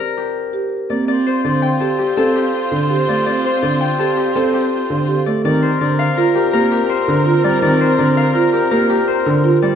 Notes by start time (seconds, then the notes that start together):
Already playing: G4 C5 D5 D#5
0.00 A#4
0.17 G4
0.53 G4
0.90 A#3 C4 D5
1.08 C4 F4 C5 D5
1.27 C5
1.44 D3 D5
1.62 G5
1.80 G4 A4
1.99 G4
2.17 C4 A4
2.36 G4
2.71 D3
2.90 G4
3.08 A3 D5
3.26 C4 D5
3.45 C5
3.62 D3 D5
3.81 G5
3.99 G4 A4
4.17 G4
4.35 C4 A4
4.54 G4
4.90 D3
5.08 G4
5.26 A3 D5
5.44 D#3 C4 A#4 D5
5.62 C5
5.81 D3 D5
5.99 F5
6.17 F4 A#4
6.35 G4
6.53 A#3 G4 A#4
6.71 G4
6.89 C5
7.08 D3
7.26 F4
7.44 G3 D5
7.62 D#3 C4 D5
7.81 C5
7.99 D3 D5
8.17 F5
8.35 F4 A#4
8.53 G4
8.71 A#3 G4 A#4
8.90 G4
9.08 C5
9.26 D3
9.44 F4
9.62 G3 D5